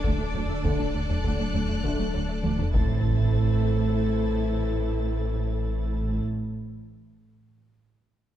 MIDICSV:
0, 0, Header, 1, 12, 480
1, 0, Start_track
1, 0, Tempo, 600000
1, 517, Time_signature, 4, 2, 24, 8
1, 6691, End_track
2, 0, Start_track
2, 0, Title_t, "Violin section"
2, 0, Program_c, 0, 48
2, 36, Note_on_c, 0, 86, 89
2, 395, Note_on_c, 0, 88, 85
2, 397, Note_off_c, 0, 86, 0
2, 514, Note_on_c, 0, 90, 111
2, 516, Note_off_c, 0, 88, 0
2, 2188, Note_on_c, 0, 93, 68
2, 2196, Note_off_c, 0, 90, 0
2, 4960, Note_off_c, 0, 93, 0
2, 6691, End_track
3, 0, Start_track
3, 0, Title_t, "Violin section"
3, 0, Program_c, 1, 48
3, 0, Note_on_c, 1, 69, 95
3, 0, Note_on_c, 1, 74, 94
3, 2162, Note_off_c, 1, 69, 0
3, 2162, Note_off_c, 1, 74, 0
3, 2189, Note_on_c, 1, 69, 73
3, 2189, Note_on_c, 1, 72, 72
3, 4961, Note_off_c, 1, 69, 0
3, 4961, Note_off_c, 1, 72, 0
3, 6691, End_track
4, 0, Start_track
4, 0, Title_t, "French horn section"
4, 0, Program_c, 2, 60
4, 514, Note_on_c, 2, 69, 61
4, 516, Note_on_c, 2, 62, 62
4, 682, Note_off_c, 2, 69, 0
4, 684, Note_off_c, 2, 62, 0
4, 1463, Note_on_c, 2, 69, 62
4, 1470, Note_on_c, 2, 62, 59
4, 1635, Note_off_c, 2, 69, 0
4, 1640, Note_off_c, 2, 62, 0
4, 2192, Note_on_c, 2, 60, 61
4, 2194, Note_on_c, 2, 69, 61
4, 4963, Note_off_c, 2, 60, 0
4, 4964, Note_off_c, 2, 69, 0
4, 6691, End_track
5, 0, Start_track
5, 0, Title_t, "Viola section"
5, 0, Program_c, 3, 48
5, 0, Note_on_c, 3, 62, 82
5, 31, Note_on_c, 3, 57, 76
5, 80, Note_off_c, 3, 57, 0
5, 154, Note_on_c, 3, 57, 50
5, 202, Note_off_c, 3, 57, 0
5, 273, Note_on_c, 3, 57, 56
5, 322, Note_off_c, 3, 57, 0
5, 395, Note_on_c, 3, 57, 58
5, 444, Note_off_c, 3, 57, 0
5, 508, Note_on_c, 3, 57, 64
5, 558, Note_off_c, 3, 57, 0
5, 629, Note_on_c, 3, 57, 49
5, 678, Note_off_c, 3, 57, 0
5, 752, Note_on_c, 3, 57, 50
5, 801, Note_off_c, 3, 57, 0
5, 873, Note_on_c, 3, 57, 50
5, 922, Note_off_c, 3, 57, 0
5, 993, Note_on_c, 3, 57, 65
5, 1041, Note_off_c, 3, 57, 0
5, 1109, Note_on_c, 3, 57, 57
5, 1159, Note_off_c, 3, 57, 0
5, 1231, Note_on_c, 3, 57, 55
5, 1280, Note_off_c, 3, 57, 0
5, 1350, Note_on_c, 3, 57, 51
5, 1399, Note_off_c, 3, 57, 0
5, 1469, Note_on_c, 3, 57, 69
5, 1519, Note_off_c, 3, 57, 0
5, 1588, Note_on_c, 3, 57, 56
5, 1638, Note_off_c, 3, 57, 0
5, 1708, Note_on_c, 3, 57, 56
5, 1758, Note_off_c, 3, 57, 0
5, 1831, Note_on_c, 3, 57, 50
5, 1880, Note_off_c, 3, 57, 0
5, 1956, Note_on_c, 3, 57, 70
5, 2004, Note_off_c, 3, 57, 0
5, 2073, Note_on_c, 3, 57, 50
5, 2122, Note_off_c, 3, 57, 0
5, 2161, Note_off_c, 3, 62, 0
5, 2187, Note_on_c, 3, 57, 65
5, 2187, Note_on_c, 3, 64, 65
5, 4960, Note_off_c, 3, 57, 0
5, 4960, Note_off_c, 3, 64, 0
5, 6691, End_track
6, 0, Start_track
6, 0, Title_t, "Trombone section"
6, 0, Program_c, 4, 61
6, 515, Note_on_c, 4, 50, 64
6, 516, Note_on_c, 4, 57, 54
6, 683, Note_off_c, 4, 50, 0
6, 684, Note_off_c, 4, 57, 0
6, 1479, Note_on_c, 4, 50, 58
6, 1479, Note_on_c, 4, 57, 59
6, 1646, Note_off_c, 4, 50, 0
6, 1646, Note_off_c, 4, 57, 0
6, 2193, Note_on_c, 4, 52, 64
6, 2193, Note_on_c, 4, 57, 68
6, 4963, Note_off_c, 4, 52, 0
6, 4963, Note_off_c, 4, 57, 0
6, 6691, End_track
7, 0, Start_track
7, 0, Title_t, "Synth pluck"
7, 0, Program_c, 5, 84
7, 33, Note_on_c, 5, 50, 113
7, 106, Note_off_c, 5, 50, 0
7, 152, Note_on_c, 5, 62, 74
7, 225, Note_off_c, 5, 62, 0
7, 277, Note_on_c, 5, 54, 71
7, 349, Note_off_c, 5, 54, 0
7, 395, Note_on_c, 5, 62, 75
7, 468, Note_off_c, 5, 62, 0
7, 516, Note_on_c, 5, 50, 112
7, 588, Note_off_c, 5, 50, 0
7, 636, Note_on_c, 5, 62, 78
7, 708, Note_off_c, 5, 62, 0
7, 756, Note_on_c, 5, 62, 77
7, 828, Note_off_c, 5, 62, 0
7, 877, Note_on_c, 5, 54, 77
7, 949, Note_off_c, 5, 54, 0
7, 994, Note_on_c, 5, 50, 107
7, 1067, Note_off_c, 5, 50, 0
7, 1116, Note_on_c, 5, 54, 66
7, 1188, Note_off_c, 5, 54, 0
7, 1234, Note_on_c, 5, 54, 73
7, 1307, Note_off_c, 5, 54, 0
7, 1353, Note_on_c, 5, 57, 73
7, 1426, Note_off_c, 5, 57, 0
7, 1474, Note_on_c, 5, 50, 114
7, 1547, Note_off_c, 5, 50, 0
7, 1596, Note_on_c, 5, 54, 82
7, 1669, Note_off_c, 5, 54, 0
7, 1712, Note_on_c, 5, 54, 90
7, 1786, Note_off_c, 5, 54, 0
7, 1831, Note_on_c, 5, 57, 75
7, 1904, Note_off_c, 5, 57, 0
7, 1951, Note_on_c, 5, 50, 104
7, 2025, Note_off_c, 5, 50, 0
7, 2074, Note_on_c, 5, 62, 74
7, 2147, Note_off_c, 5, 62, 0
7, 6691, End_track
8, 0, Start_track
8, 0, Title_t, "Cello section"
8, 0, Program_c, 6, 48
8, 30, Note_on_c, 6, 38, 76
8, 79, Note_off_c, 6, 38, 0
8, 147, Note_on_c, 6, 38, 59
8, 197, Note_off_c, 6, 38, 0
8, 269, Note_on_c, 6, 38, 54
8, 318, Note_off_c, 6, 38, 0
8, 392, Note_on_c, 6, 38, 52
8, 441, Note_off_c, 6, 38, 0
8, 510, Note_on_c, 6, 38, 64
8, 560, Note_off_c, 6, 38, 0
8, 631, Note_on_c, 6, 38, 52
8, 680, Note_off_c, 6, 38, 0
8, 752, Note_on_c, 6, 38, 55
8, 801, Note_off_c, 6, 38, 0
8, 873, Note_on_c, 6, 38, 53
8, 922, Note_off_c, 6, 38, 0
8, 988, Note_on_c, 6, 38, 73
8, 1038, Note_off_c, 6, 38, 0
8, 1114, Note_on_c, 6, 38, 54
8, 1163, Note_off_c, 6, 38, 0
8, 1230, Note_on_c, 6, 38, 52
8, 1280, Note_off_c, 6, 38, 0
8, 1350, Note_on_c, 6, 38, 58
8, 1400, Note_off_c, 6, 38, 0
8, 1472, Note_on_c, 6, 38, 72
8, 1521, Note_off_c, 6, 38, 0
8, 1590, Note_on_c, 6, 38, 52
8, 1640, Note_off_c, 6, 38, 0
8, 1711, Note_on_c, 6, 38, 50
8, 1760, Note_off_c, 6, 38, 0
8, 1829, Note_on_c, 6, 38, 46
8, 1878, Note_off_c, 6, 38, 0
8, 1952, Note_on_c, 6, 38, 68
8, 2001, Note_off_c, 6, 38, 0
8, 2071, Note_on_c, 6, 38, 58
8, 2120, Note_off_c, 6, 38, 0
8, 2190, Note_on_c, 6, 45, 70
8, 4961, Note_off_c, 6, 45, 0
8, 6691, End_track
9, 0, Start_track
9, 0, Title_t, "Double bass section"
9, 0, Program_c, 7, 48
9, 37, Note_on_c, 7, 38, 81
9, 85, Note_off_c, 7, 38, 0
9, 276, Note_on_c, 7, 38, 55
9, 324, Note_off_c, 7, 38, 0
9, 513, Note_on_c, 7, 38, 70
9, 562, Note_off_c, 7, 38, 0
9, 755, Note_on_c, 7, 38, 50
9, 803, Note_off_c, 7, 38, 0
9, 993, Note_on_c, 7, 38, 67
9, 1042, Note_off_c, 7, 38, 0
9, 1232, Note_on_c, 7, 38, 58
9, 1281, Note_off_c, 7, 38, 0
9, 1470, Note_on_c, 7, 38, 70
9, 1520, Note_off_c, 7, 38, 0
9, 1719, Note_on_c, 7, 38, 51
9, 1767, Note_off_c, 7, 38, 0
9, 1955, Note_on_c, 7, 38, 76
9, 2004, Note_off_c, 7, 38, 0
9, 2190, Note_on_c, 7, 33, 73
9, 4962, Note_off_c, 7, 33, 0
9, 6691, End_track
10, 0, Start_track
10, 0, Title_t, "Sub bass"
10, 0, Program_c, 8, 38
10, 0, Note_on_c, 8, 26, 89
10, 2186, Note_off_c, 8, 26, 0
10, 2191, Note_on_c, 8, 33, 87
10, 4962, Note_off_c, 8, 33, 0
10, 6691, End_track
11, 0, Start_track
11, 0, Title_t, "Impact"
11, 0, Program_c, 10, 103
11, 2192, Note_on_c, 10, 60, 68
11, 5245, Note_off_c, 10, 60, 0
11, 6691, End_track
12, 0, Start_track
12, 0, Title_t, "Taiko and cinematic ensemble drums"
12, 32, Note_on_c, 9, 41, 92
12, 112, Note_off_c, 9, 41, 0
12, 274, Note_on_c, 9, 45, 61
12, 354, Note_off_c, 9, 45, 0
12, 514, Note_on_c, 9, 41, 101
12, 594, Note_off_c, 9, 41, 0
12, 875, Note_on_c, 9, 45, 62
12, 955, Note_off_c, 9, 45, 0
12, 991, Note_on_c, 9, 41, 82
12, 1071, Note_off_c, 9, 41, 0
12, 1232, Note_on_c, 9, 45, 76
12, 1312, Note_off_c, 9, 45, 0
12, 1349, Note_on_c, 9, 45, 54
12, 1429, Note_off_c, 9, 45, 0
12, 1468, Note_on_c, 9, 41, 80
12, 1548, Note_off_c, 9, 41, 0
12, 1948, Note_on_c, 9, 48, 86
12, 2028, Note_off_c, 9, 48, 0
12, 2070, Note_on_c, 9, 45, 98
12, 2150, Note_off_c, 9, 45, 0
12, 2192, Note_on_c, 9, 41, 104
12, 2272, Note_off_c, 9, 41, 0
12, 6691, End_track
0, 0, End_of_file